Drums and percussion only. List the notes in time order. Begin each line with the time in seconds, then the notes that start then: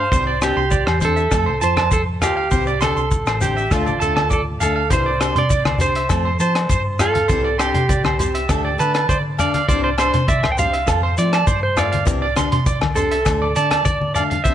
0.12 kick, shekere
0.42 cross-stick, closed hi-hat, low agogo, shekere
0.71 kick, shekere
0.87 cross-stick, low agogo
1.01 closed hi-hat, high conga, low conga, shekere
1.17 shekere
1.31 kick, cross-stick, low agogo, shekere
1.62 closed hi-hat, shekere
1.77 cross-stick, high conga, low agogo, shekere
1.91 kick, shekere
2.22 cross-stick, closed hi-hat, low conga, low agogo, shekere
2.51 kick, shekere
2.67 shekere
2.81 cross-stick, closed hi-hat, high conga, low agogo, shekere
2.97 shekere
3.11 kick, shekere
3.26 cross-stick, low agogo, shekere
3.41 closed hi-hat, high conga, low conga, shekere
3.58 shekere
3.71 kick, cross-stick, low agogo, shekere
3.87 high conga, shekere
4.01 closed hi-hat, low conga, shekere
4.17 cross-stick, high conga, low agogo
4.31 kick, shekere
4.61 closed hi-hat, low conga, low agogo, shekere
4.90 kick, closed hi-hat, shekere
5.21 cross-stick, closed hi-hat, low agogo, shekere
5.36 closed hi-hat, low conga
5.50 kick, closed hi-hat, shekere
5.65 cross-stick, high conga, low agogo
5.78 closed hi-hat, low conga, shekere
5.95 closed hi-hat
6.09 kick, cross-stick, closed hi-hat, low agogo, shekere
6.40 closed hi-hat, shekere
6.55 cross-stick, closed hi-hat, low agogo
6.69 kick, closed hi-hat, shekere
6.99 cross-stick, closed hi-hat, low conga, low agogo, shekere
7.15 closed hi-hat, high conga
7.29 kick, closed hi-hat, shekere
7.59 cross-stick, closed hi-hat, low agogo, shekere
7.74 closed hi-hat, low conga
7.89 kick, closed hi-hat, shekere
8.04 cross-stick, high conga, low agogo
8.19 closed hi-hat, low conga, shekere
8.35 closed hi-hat
8.49 kick, cross-stick, closed hi-hat, low agogo, shekere
8.79 closed hi-hat, shekere
8.94 cross-stick, closed hi-hat, low agogo
9.09 kick, closed hi-hat, shekere
9.39 closed hi-hat, low conga, low agogo, shekere
9.54 closed hi-hat, high conga
9.69 kick, closed hi-hat, shekere
9.98 cross-stick, closed hi-hat, low agogo, shekere
10.14 closed hi-hat, low conga
10.28 kick, closed hi-hat, shekere
10.43 cross-stick, high conga, low agogo
10.58 closed hi-hat, low conga, shekere
10.73 closed hi-hat
10.87 kick, cross-stick, closed hi-hat, low agogo, shekere
11.17 closed hi-hat, shekere
11.33 cross-stick, closed hi-hat, low agogo
11.47 kick, closed hi-hat, shekere
11.77 cross-stick, closed hi-hat, low conga, low agogo, shekere
11.93 closed hi-hat, high conga
12.07 kick, closed hi-hat, shekere
12.36 cross-stick, closed hi-hat, high conga, low agogo, shekere
12.52 closed hi-hat, low conga
12.66 kick, closed hi-hat, shekere
12.81 cross-stick, high conga, low agogo
12.96 closed hi-hat, low conga, shekere
13.11 closed hi-hat
13.25 kick, cross-stick, closed hi-hat, low agogo, shekere
13.56 closed hi-hat, shekere
13.71 cross-stick, closed hi-hat, high conga, low agogo
13.85 kick, closed hi-hat, high conga, shekere
14.01 high conga
14.15 closed hi-hat, low conga, low agogo, shekere
14.31 closed hi-hat, low conga
14.45 kick, closed hi-hat, shekere